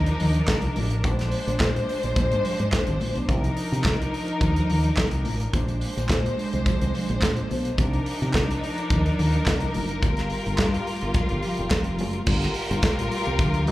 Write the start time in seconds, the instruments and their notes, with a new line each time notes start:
Already playing: fingered electric bass D#2, string section F3 D4 D#4 A#4
0.06 closed hi-hat
0.20 fingered electric bass D#2, open hi-hat, low conga
0.34 closed hi-hat
0.47 fingered electric bass C2, kick, snare, clap, closed hi-hat, high conga
0.62 closed hi-hat
0.76 fingered electric bass A1, open hi-hat, high conga
0.90 closed hi-hat
1.04 fingered electric bass A#1, string section G#3 C5, kick, closed hi-hat, muted conga
1.19 snare, closed hi-hat
1.32 open hi-hat
1.47 fingered electric bass A#1, closed hi-hat
1.60 fingered electric bass A#2, kick, snare, clap, closed hi-hat, high conga
1.76 closed hi-hat
1.88 open hi-hat, muted conga
2.03 fingered electric bass A#1, closed hi-hat
2.16 fingered electric bass A#2, kick, closed hi-hat, muted conga, low conga
2.32 fingered electric bass G#2, closed hi-hat
2.45 open hi-hat, low conga
2.59 fingered electric bass G#2, closed hi-hat
2.72 kick, snare, clap, closed hi-hat, high conga
2.87 fingered electric bass G#1, closed hi-hat
3.00 fingered electric bass A#1, open hi-hat, high conga
3.15 fingered electric bass B1, closed hi-hat
3.29 fingered electric bass C2, string section F3 D#4 A#4, kick, closed hi-hat, muted conga
3.44 closed hi-hat
3.57 open hi-hat
3.72 fingered electric bass C3, closed hi-hat
3.84 fingered electric bass C2, kick, snare, clap, closed hi-hat, high conga
4.02 closed hi-hat
4.14 open hi-hat
4.28 closed hi-hat
4.41 fingered electric bass D#2, kick, closed hi-hat, muted conga, low conga
4.56 closed hi-hat
4.69 fingered electric bass D#2, open hi-hat, low conga
4.84 closed hi-hat
4.97 fingered electric bass C2, kick, snare, clap, closed hi-hat, high conga
5.11 closed hi-hat
5.25 fingered electric bass A1, open hi-hat, high conga
5.40 closed hi-hat
5.53 fingered electric bass A#1, string section G#3 C5, kick, closed hi-hat, muted conga
5.68 closed hi-hat
5.81 open hi-hat
5.97 fingered electric bass A#1, closed hi-hat
6.09 fingered electric bass A#2, kick, snare, clap, closed hi-hat, high conga
6.26 closed hi-hat
6.38 open hi-hat, muted conga
6.53 fingered electric bass C2, closed hi-hat
6.66 kick, closed hi-hat, muted conga, low conga
6.81 fingered electric bass C2, closed hi-hat
6.94 open hi-hat, low conga
7.09 fingered electric bass A#1, closed hi-hat
7.22 fingered electric bass A#1, kick, snare, clap, closed hi-hat, high conga
7.37 closed hi-hat
7.50 fingered electric bass B1, open hi-hat, high conga
7.65 closed hi-hat
7.78 fingered electric bass C2, string section F3 D4 D#4 A#4, kick, closed hi-hat, muted conga
7.93 closed hi-hat
8.06 open hi-hat
8.22 fingered electric bass C3, closed hi-hat
8.33 fingered electric bass C2, kick, snare, clap, closed hi-hat, high conga
8.51 closed hi-hat
8.63 open hi-hat, muted conga
8.78 closed hi-hat
8.90 fingered electric bass D#2, kick, closed hi-hat, muted conga, low conga
9.06 closed hi-hat
9.19 fingered electric bass D#2, open hi-hat, low conga
9.34 closed hi-hat
9.46 fingered electric bass C2, kick, snare, clap, closed hi-hat, high conga
9.60 closed hi-hat
9.74 fingered electric bass F#1, open hi-hat, high conga
9.89 closed hi-hat
10.02 fingered electric bass G1, string section G3 F4, kick, closed hi-hat, muted conga
10.17 snare, closed hi-hat
10.30 open hi-hat
10.46 fingered electric bass G1, closed hi-hat
10.58 fingered electric bass G2, kick, snare, clap, closed hi-hat, high conga
10.74 closed hi-hat
10.87 open hi-hat, muted conga
11.01 fingered electric bass G1, closed hi-hat
11.14 kick, closed hi-hat, muted conga, low conga
11.29 fingered electric bass G1, closed hi-hat
11.43 open hi-hat, low conga
11.57 fingered electric bass F1, closed hi-hat
11.70 fingered electric bass F1, kick, snare, clap, closed hi-hat, high conga
11.84 closed hi-hat
11.99 fingered electric bass F#1, open hi-hat, high conga
12.13 closed hi-hat
12.26 fingered electric bass G1, string section G3 F4 A#4, kick, crash, muted conga
12.42 snare, closed hi-hat
12.54 open hi-hat
12.71 fingered electric bass G1, closed hi-hat
12.82 kick, snare, closed hi-hat, high conga
12.99 fingered electric bass A#1, closed hi-hat
13.11 open hi-hat, muted conga
13.26 fingered electric bass C2, closed hi-hat
13.39 fingered electric bass D2, kick, closed hi-hat, muted conga, low conga
13.54 closed hi-hat
13.67 fingered electric bass F2, open hi-hat, low conga